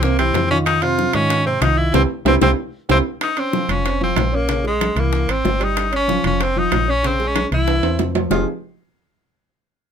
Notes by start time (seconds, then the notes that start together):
Already playing: C2
0.03 C3 A#3 C4 C5, high bongo
0.19 E3 C4 E4 G4, high bongo, high timbale
0.34 F2, high bongo, low bongo, high timbale, low timbale
0.50 D#3 C#4 D#4 F4, high bongo
0.66 D#4, high bongo, high timbale
0.82 C3 C4 F4 C5, high timbale
0.99 high bongo
1.13 G#2 D#3 C#4 D#4 F4, high timbale
1.30 high bongo, high timbale
1.45 C3 C4 C5
1.61 C2 D#3 D#4 F4, high bongo, low bongo, high timbale
1.78 E4
1.93 C2 C4 E4 G4, low bongo, high timbale
2.25 C2 C4 E4 G4, low bongo, high timbale
2.41 C2 C4 E4 G4, low bongo, high timbale
2.89 C2 C4 E4 G4, low bongo, high timbale
3.21 D#4, high bongo, high timbale
3.37 C4 C#4 C#5, high bongo, high timbale
3.53 F3 F4, high bongo, low timbale
3.69 F1 F3 C#4 F4, high bongo, high timbale
3.84 C4 C5, high bongo, high timbale
4.01 F3 C4 F4
4.16 A#1, high bongo, low bongo, high timbale, low timbale
4.32 A#3 C#4 C#5
4.49 C#3 C#4, high bongo, high timbale
4.64 G#3 G#4, high bongo
4.81 high bongo, high timbale, low timbale
4.96 C2 E3 A#3 E4, high bongo, high timbale
5.13 high bongo
5.28 G#1 C4 C5, high timbale
5.45 G1, high bongo, low bongo, low timbale
5.60 G3 D#4 G4, high timbale
5.77 high bongo, high timbale
5.92 C#4 C#5, high bongo, high timbale
5.96 C#4
6.08 F3 F4, high bongo, low timbale
6.24 F1 F3 C#4 F4, high bongo, high timbale
6.40 C4 C5, high bongo, high timbale
6.56 F3 D#4 F4
6.72 A#1, high bongo, low bongo, high timbale, low timbale
6.88 C#4 C#5
7.03 C#3 C4 C#4, high bongo, high timbale
7.20 G#3 G#4, high bongo
7.28 C#4
7.36 high bongo, high timbale, low timbale
7.52 C2 E3 E4, high bongo, high timbale
7.68 high bongo, high timbale
7.83 E2 C4 C5, high timbale
7.99 F2, high bongo, low bongo, low timbale
8.15 F3 F4, low timbale
8.30 F1 F3 C4 D#4 F4 G4 G#4, low bongo, low timbale